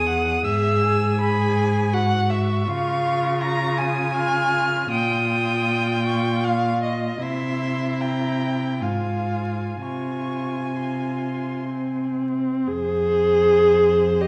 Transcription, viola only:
0.00 0.41 G#4 medium
0.45 1.19 G#4 medium
1.21 1.94 G#4 loud
1.92 2.66 F#4 medium
2.67 4.12 F4 loud
4.15 4.90 F4 medium
4.91 7.18 F4 medium
7.22 8.82 E4 medium
8.81 9.82 F4 medium
9.83 10.76 F4 medium
10.78 11.67 F4 medium
11.70 12.69 C4 medium
12.68 14.23 G#4 loud
14.21 14.28 G4 medium

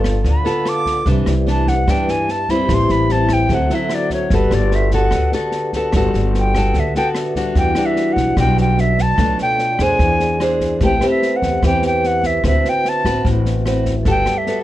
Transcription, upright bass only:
0.00 0.21 G1 medium
0.25 0.44 D2 medium
1.06 1.25 C2 loud
1.26 1.83 C2 medium
1.88 2.06 G2 medium
2.69 2.88 A1 loud
2.89 3.46 A1 medium
3.49 3.68 D2 loud
4.30 4.50 G1 loud
4.51 5.08 G1 loud
5.12 5.31 D2 medium
5.93 6.13 G1 loud
6.14 6.71 G1 loud
6.74 6.94 D2 medium
7.55 7.75 E2 medium
8.16 8.36 B1 medium
8.37 9.14 B1 loud
9.18 9.37 B1 loud
9.79 9.98 F2 medium
9.99 10.77 E2 loud
10.81 11.00 A1 loud
11.42 11.61 E2 medium
11.63 12.40 E2 loud
12.44 12.63 D2 loud
13.05 13.24 A1 medium
13.25 14.02 A1 loud
14.05 14.25 G1 loud

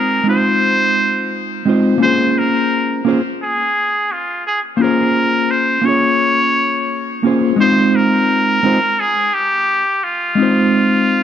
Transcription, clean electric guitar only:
0.00 0.22 G#3 medium
0.00 0.22 C4 medium
0.00 0.23 D#4 medium
0.00 0.24 F4 medium
0.00 0.25 C5 medium
0.24 1.61 G#3 medium
0.24 1.62 C4 medium
0.24 1.63 D#4 medium
0.29 1.64 F4 medium
0.29 1.65 C5 medium
1.65 1.97 G#3 medium
1.65 1.98 C4 medium
1.65 1.98 D#4 medium
1.65 1.99 F4 medium
1.65 1.99 C5 medium
1.98 3.01 A#3 medium
1.98 3.02 C#4 medium
1.98 3.03 F4 medium
2.04 3.04 G#4 medium
2.04 3.05 C5 loud
3.05 3.19 A#3 loud
3.05 3.20 C#4 medium
3.05 3.20 F4 medium
3.05 3.20 G#4 medium
3.05 3.21 C5 loud
4.77 5.80 A#3 medium
4.77 5.81 C#4 medium
4.77 5.82 F4 medium
4.82 5.82 G#4 medium
4.82 5.83 C5 medium
5.82 7.19 A#3 medium
5.82 7.20 C#4 medium
5.82 7.21 F4 medium
5.87 7.22 G#4 medium
5.87 7.23 C#5 medium
7.23 7.55 A#3 medium
7.23 7.56 C#4 medium
7.23 7.56 F4 medium
7.23 7.57 G#4 medium
7.23 7.57 C5 medium
7.56 8.59 G#3 medium
7.56 8.60 C4 medium
7.56 8.61 D#4 medium
7.62 8.62 F4 medium
7.62 8.63 C5 loud
8.63 8.77 G#3 loud
8.63 8.78 C4 medium
8.63 8.78 D#4 medium
8.63 8.79 F4 medium
8.63 8.79 C5 loud
10.35 11.23 G#3 medium
10.35 11.23 C4 medium
10.35 11.23 D#4 medium
10.41 11.23 F4 medium
10.41 11.23 C5 medium

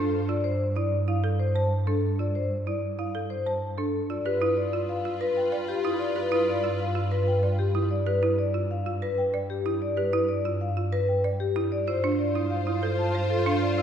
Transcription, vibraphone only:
0.00 0.18 A4 medium
0.28 0.49 D5 medium
0.44 0.65 C5 medium
0.76 0.97 D5 medium
1.08 1.29 F5 medium
1.39 1.60 C5 medium
1.55 1.76 A5 medium
1.87 2.08 A4 medium
2.20 2.40 D5 medium
2.35 2.56 C5 medium
2.67 2.88 D5 medium
2.99 3.19 F5 medium
3.30 3.51 C5 medium
3.46 3.67 A5 medium
3.78 3.99 A4 medium
4.10 4.30 D5 medium
4.25 4.46 B4 medium
4.57 4.78 D5 medium
4.89 5.10 F5 medium
5.21 5.42 B4 medium
5.37 5.57 G5 medium
5.68 5.89 G4 medium
5.99 6.21 D5 medium
6.16 6.37 B4 medium
6.48 6.69 D5 medium
6.80 7.00 F5 medium
7.11 7.32 B4 medium
7.27 7.48 G5 medium
7.59 7.80 G4 medium
7.91 8.11 D5 medium
8.07 8.27 B4 medium
8.39 8.59 D5 medium
8.71 8.91 F5 medium
9.03 9.23 B4 medium
9.18 9.38 G5 medium
9.50 9.70 G4 medium
9.82 10.02 D5 medium
9.97 10.18 B4 medium
10.29 10.49 D5 medium
10.61 10.81 F5 medium
10.92 11.13 B4 medium
11.09 11.29 G5 medium
11.40 11.61 G4 medium
11.72 11.92 D5 medium
11.87 12.08 C5 medium
12.19 12.40 D5 medium
12.50 12.71 F5 medium
12.82 13.03 C5 medium
12.99 13.19 A5 medium
13.30 13.51 A4 medium
13.62 13.82 D5 medium
13.77 13.82 C5 medium

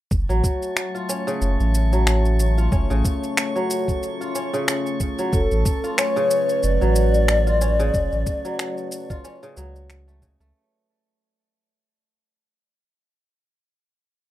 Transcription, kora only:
0.29 1.31 F#3 medium
0.95 1.99 F4 medium
1.09 2.72 C#4 medium
1.27 2.89 C#3 medium
1.93 2.94 F#3 medium
2.58 3.62 F4 medium
2.72 4.35 C#4 medium
2.90 4.52 C#3 loud
3.56 4.57 F#3 medium
4.21 5.25 F4 medium
4.35 5.98 C#4 medium
4.53 5.38 C#3 medium
5.19 5.38 F#3 medium
5.84 6.87 F4 medium
5.98 7.61 C#4 medium
6.16 7.78 C#3 medium
6.81 7.83 F#3 medium
7.47 8.51 F4 medium
7.61 9.24 C#4 medium
7.79 9.42 C#3 loud
8.45 9.46 F#3 medium
9.10 9.63 F4 medium
9.24 10.98 C#4 medium
9.43 10.21 C#3 loud
9.57 10.27 F#3 medium
10.08 10.40 A3 medium
10.22 10.60 C#3 medium
10.40 12.40 A3 loud

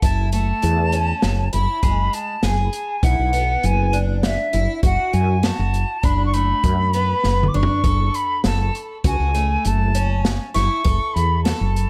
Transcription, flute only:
0.02 0.31 A5 medium
0.32 1.49 A5 medium
1.53 2.15 B5 medium
2.14 2.45 A5 medium
2.44 3.05 G#5 medium
3.04 3.67 F#5 medium
3.65 3.98 G#5 medium
4.25 4.80 E5 medium
4.85 5.15 F#5 medium
5.13 5.46 G#5 medium
5.45 6.06 A5 medium
6.05 6.25 B5 medium
6.26 6.35 C#6 medium
6.34 7.49 B5 medium
7.48 7.57 D6 medium
7.56 8.17 C#6 medium
8.15 8.45 B5 medium
8.45 8.76 A5 medium
9.07 9.68 G#5 medium
9.67 10.26 A5 medium
10.54 11.15 C#6 medium
11.14 11.43 B5 medium
11.44 11.90 A5 medium

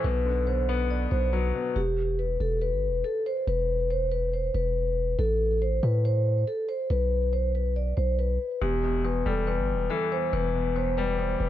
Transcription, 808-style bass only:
0.04 1.08 B1 loud
1.12 1.53 B1 loud
1.76 2.38 E1 loud
2.40 2.74 E1 loud
2.72 2.90 G1 loud
2.88 3.04 E1 loud
3.47 4.51 E1 loud
4.54 5.16 E1 loud
5.19 5.81 A1 loud
5.83 6.45 A2 loud
6.90 7.93 B1 loud
7.97 8.39 B1 loud
8.62 9.23 E1 loud
9.26 9.60 E1 loud
9.58 9.76 G1 loud
9.74 9.89 E1 loud
10.33 11.36 E1 loud
11.40 11.49 E1 loud

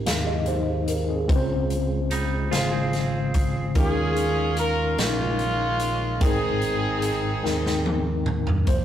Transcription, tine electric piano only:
0.00 1.31 G#2 medium
0.00 1.28 G#3 medium
0.00 1.09 C4 medium
0.00 0.48 D#4 medium
0.00 0.27 G4 medium
0.00 0.88 A#4 medium
0.06 0.26 G#4 soft
0.06 0.26 F5 medium
0.27 0.46 G4 medium
0.27 0.46 D#5 medium
0.48 0.87 D#4 medium
0.48 0.86 C5 medium
0.88 1.07 A#4 medium
1.09 1.27 C4 medium
1.09 1.48 G#4 medium
1.28 2.48 C#3 medium
1.28 2.28 G#3 medium
1.28 2.29 C4 medium
1.28 2.29 C#4 medium
1.28 2.29 F4 medium
1.28 1.36 B4 medium
1.36 2.32 C5 loud
2.51 3.52 C#3 medium
2.51 3.52 G#3 medium
2.51 3.52 F4 medium
2.51 3.51 C5 medium
2.51 3.52 F5 medium
3.75 4.94 D#3 medium
3.75 3.81 G3 medium
3.75 4.75 C#4 medium
3.75 4.75 D#4 medium
3.75 4.75 F4 medium
3.75 4.76 A#4 medium
3.81 4.78 G#3 medium
4.97 5.98 G#3 medium
4.97 5.98 C#4 medium
4.97 5.98 D#4 medium
4.97 5.98 F4 medium
4.97 5.99 A#4 medium
6.20 7.40 G#2 medium
6.20 7.21 G#3 medium
6.20 7.21 C4 medium
6.20 7.21 D#4 medium
6.20 7.21 A#4 medium
6.20 7.21 G5 medium
7.43 8.44 G#3 medium
7.43 8.44 C4 medium
7.43 8.44 D#4 medium
7.43 8.44 A#4 medium
7.43 8.44 G5 medium
8.67 8.85 C3 soft
8.67 8.85 F3 soft
8.67 8.85 A#3 medium
8.67 8.85 C5 medium

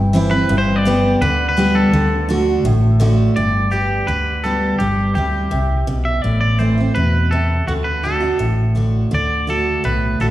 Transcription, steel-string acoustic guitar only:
0.00 0.46 G2 medium
0.13 0.31 E3 medium
0.13 0.31 G3 medium
0.13 0.31 C4 medium
0.13 0.29 E4 loud
0.30 0.49 C4 medium
0.30 0.48 E4 medium
0.49 1.17 G2 medium
0.85 1.19 G3 medium
0.85 1.20 B3 medium
0.85 1.20 D4 medium
0.85 1.20 G4 loud
1.22 1.89 D3 medium
1.57 1.91 G3 medium
1.57 1.91 B3 medium
1.57 1.92 D4 medium
1.57 1.92 G4 loud
1.93 2.27 D3 medium
2.29 2.63 D3 medium
2.29 2.63 A3 medium
2.29 2.63 D4 loud
2.29 2.63 F#4 medium
2.65 3.33 A2 medium
3.00 3.34 D3 medium
3.00 3.34 A3 medium
3.00 3.35 D4 medium
3.00 3.35 F#4 loud
3.37 4.04 G2 medium
3.71 4.06 G3 soft
3.71 4.06 B3 soft
3.71 4.06 D4 medium
3.71 4.07 G4 medium
4.08 4.76 D3 medium
4.44 4.78 G3 medium
4.44 4.78 B3 medium
4.44 4.79 D4 soft
4.44 4.79 G4 medium
4.80 5.14 G3 medium
5.15 5.50 G3 soft
5.15 5.50 C4 medium
5.15 5.51 E4 medium
5.51 5.86 C3 medium
5.87 6.22 B2 medium
6.24 6.92 A2 medium
6.59 6.77 E3 medium
6.59 6.77 A3 medium
6.59 6.77 C4 medium
6.59 6.76 E4 medium
6.78 6.96 C4 soft
6.78 6.95 E4 soft
6.96 7.30 B2 medium
7.32 7.66 C3 medium
7.68 8.02 D3 medium
8.03 8.21 D3 soft
8.03 8.21 A3 medium
8.03 8.21 D4 medium
8.03 8.19 F#4 medium
8.20 8.39 D4 soft
8.20 8.38 F#4 soft
8.39 9.08 A2 medium
8.75 9.09 D3 soft
8.75 9.10 A3 medium
8.75 9.10 D4 medium
8.75 9.11 F#4 medium
9.11 9.46 D3 medium
9.47 9.82 D3 medium
9.47 9.82 A3 medium
9.47 9.82 D4 medium
9.47 9.83 F#4 medium
9.84 10.31 A2 medium
10.20 10.31 D3 medium
10.20 10.31 A3 medium
10.20 10.31 D4 medium
10.20 10.31 F#4 medium

